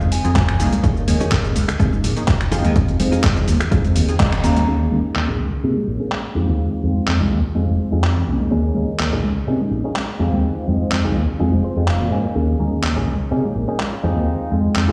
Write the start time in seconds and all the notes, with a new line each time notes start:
Already playing: C4 D#4 F4 G#4 F5
0.00 F1, tambourine, high conga, shaker
0.11 G#5, muted clean electric guitar stroke, open hi-hat, tambourine, shaker
0.24 F2 C4 D#4 F4 G#4, closed hi-hat, tambourine, shaker
0.36 G#5, kick, clap, closed hi-hat, tambourine, high conga, shaker
0.49 finger snap, closed hi-hat, tambourine, low conga, shaker
0.59 C2 A#3 C#4 D#4 G#4, muted clean electric guitar stroke, open hi-hat, tambourine, shaker
0.73 closed hi-hat, tambourine, high conga, shaker
0.84 D#2 C#4 D#4 G#4, kick, closed hi-hat, tambourine, shaker
0.97 tambourine, shaker
1.07 D#2 A#3 C#4 D#4 G#4, open hi-hat, tambourine, high conga, shaker
1.20 C#4 D#4 G#4, muted fingered electric bass stroke, closed hi-hat, tambourine, shaker
1.32 D#2, kick, clap, closed hi-hat, shaker
1.44 A#1 A#3 C#4 D#4 G#4, muted clean electric guitar stroke, closed hi-hat, shaker
1.56 C#2, open hi-hat, tambourine, high conga, shaker
1.68 finger snap, muted clean electric guitar stroke, closed hi-hat, tambourine, shaker
1.79 C3 A#3 C#4 D#4 G#4, kick, closed hi-hat, tambourine, shaker
1.93 tambourine, high conga, shaker
2.04 A#1, muted clean electric guitar stroke, open hi-hat, tambourine, shaker
2.16 A#3 C#4 D#4 G#4, closed hi-hat, tambourine, shaker
2.28 kick, clap, closed hi-hat, tambourine, high conga, shaker
2.41 finger snap, closed hi-hat, tambourine, shaker
2.51 F2 C4 D#4 F4 G#4, open hi-hat, tambourine, low conga, shaker
2.64 D#2, closed hi-hat, tambourine, high conga, shaker
2.76 kick, closed hi-hat, tambourine, shaker
2.88 closed hi-hat, tambourine, shaker
2.99 F2 C4 D#4 F4 G#4, open hi-hat, tambourine, high conga, shaker
3.12 D#4 F4 G#4, muted fingered electric bass stroke, closed hi-hat, tambourine, shaker
3.24 F2, kick, clap, closed hi-hat, shaker
3.36 C2 C4 D#4 F4 G#4, muted clean electric guitar stroke, closed hi-hat, tambourine, low conga, shaker
3.48 D#2, open hi-hat, tambourine, high conga, shaker
3.60 finger snap, muted clean electric guitar stroke, closed hi-hat, tambourine, low conga, shaker
3.71 F2 C4 D#4 F4 G#4, kick, closed hi-hat, shaker
3.85 F1, closed hi-hat, tambourine, high conga, shaker
3.96 D#2, muted clean electric guitar stroke, open hi-hat, tambourine, shaker
4.08 C4 D#4 F4 G#4, closed hi-hat, tambourine, shaker
4.20 D#5, kick, clap, closed hi-hat, tambourine, high conga, shaker
4.32 finger snap, closed hi-hat, tambourine, low conga, shaker
4.43 D#2 A#3 C#4 D#4 G#4 A#5, muted clean electric guitar stroke, open hi-hat, tambourine, shaker
4.57 closed hi-hat, tambourine, high conga, shaker
4.67 D#2 C#4 D#4 G#4
4.81 tambourine
4.91 D#2 A#3 C#4 D#4 G#4, tambourine, high conga
5.05 muted fingered electric bass stroke, tambourine
5.16 D#2, clap
5.28 A#1 A#3 C#4 D#4 G#4
5.40 C#2, tambourine, high conga
5.52 tambourine
5.63 C3 A#3 C#4 D#4 G#4
5.77 tambourine, high conga
5.87 A#1, muted clean electric guitar stroke, tambourine
6.00 A#3 C#4 D#4 G#4, tambourine
6.11 clap, tambourine, high conga
6.23 tambourine
6.35 F2 G#3 C4 D#4 F4 G#4, tambourine, low conga
6.48 D#2, tambourine, high conga
6.59 tambourine
6.72 tambourine
6.83 F2 G#3 C4 D#4 F4, tambourine, high conga
6.96 muted fingered electric bass stroke, tambourine
7.08 F2, clap
7.19 C2 G#3 C4 D#4 F4 G#4, tambourine, low conga
7.31 D#2, tambourine, high conga
7.44 tambourine
7.55 F2 G#3 C4 D#4 F4 G#4
7.68 F1, tambourine, high conga
7.80 muted clean electric guitar stroke, tambourine
7.92 F2 G#3 C4 D#4 F4 G#4
8.04 clap, tambourine, high conga
8.16 tambourine, low conga
8.27 C2 A#3 C#4 D#4 G#4, muted clean electric guitar stroke, tambourine
8.40 tambourine, high conga
8.51 D#2 C#4 D#4 G#4
8.75 D#2 A#3 C#4 D#4 G#4, tambourine, high conga
8.88 muted fingered electric bass stroke, tambourine
9.00 D#2, clap
9.12 A#1 A#3 C#4 D#4 G#4, tambourine
9.24 C#2, tambourine, high conga
9.37 tambourine
9.47 C3 A#3 C#4 D#4 G#4
9.61 tambourine, high conga
9.71 A#1, muted clean electric guitar stroke
9.84 A#3 C#4 D#4 G#4, tambourine
9.96 clap, tambourine, high conga
10.08 tambourine
10.19 F2 G#3 C4 D#4 F4 G#4, tambourine, low conga
10.32 D#2, tambourine, high conga
10.44 tambourine
10.57 tambourine
10.67 F2 G#3 C4 D#4 F4, tambourine, high conga
10.81 muted fingered electric bass stroke, tambourine
10.92 F2, clap
11.04 C2 G#3 C4 D#4 F4 G#4, tambourine, low conga
11.16 D#2, tambourine, high conga
11.29 tambourine
11.40 F2 G#3 C4 D#4 F4 G#4
11.52 F1, tambourine, high conga
11.64 C5, muted clean electric guitar stroke, tambourine
11.76 F2 G#3 C4 D#4 F4 G#4, tambourine
11.88 F1 F5, clap, tambourine, high conga
12.00 C3, tambourine, low conga
12.11 G#2 A#3 C#4 D#4 G#4 G#5, muted clean electric guitar stroke, tambourine
12.25 tambourine, high conga
12.36 D#2 C#4 D#4 G#4
12.59 D#2 A#3 C#4 D#4 G#4, tambourine, high conga
12.73 tambourine
12.84 D#2, clap
12.96 A#1 A#3 C#4 D#4 G#4
13.07 C#2, tambourine, high conga
13.21 tambourine
13.31 C3 A#3 C#4 D#4 G#4, tambourine
13.45 tambourine, high conga
13.56 A#1, muted clean electric guitar stroke, tambourine
13.68 A#3 C#4 D#4 G#4, tambourine
13.79 F4, clap, tambourine, high conga
13.93 tambourine
14.03 F2 G#3 C4 D#4 F4 G#4, tambourine, low conga
14.16 D#2, tambourine, high conga
14.28 tambourine
14.41 tambourine
14.51 F2 G#3 C4 D#4 F4, tambourine, high conga
14.64 muted fingered electric bass stroke, tambourine
14.76 F2 F4, clap
14.88 C2 G#3 C4 D#4 F4 G#4